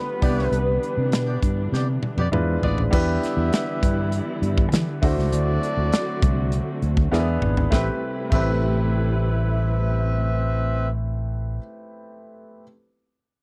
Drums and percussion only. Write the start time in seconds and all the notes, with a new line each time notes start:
0.22 kick, open hi-hat
0.39 snare
0.53 closed hi-hat
0.83 closed hi-hat
1.12 snare, closed hi-hat
1.42 kick, closed hi-hat
1.74 snare
2.03 high tom
2.18 high tom
2.33 mid tom
2.63 floor tom
2.78 floor tom
2.93 kick, crash
3.23 snare, closed hi-hat
3.53 snare, closed hi-hat
3.83 kick, closed hi-hat
4.12 closed hi-hat
4.43 closed hi-hat
4.58 kick
4.72 snare, closed hi-hat
5.03 kick, open hi-hat
5.19 snare
5.32 closed hi-hat
5.63 closed hi-hat
5.92 snare, closed hi-hat
6.22 kick, closed hi-hat
6.52 closed hi-hat
6.82 closed hi-hat
6.97 kick
7.13 snare
7.42 mid tom
7.57 floor tom
7.72 kick, snare
8.32 kick, crash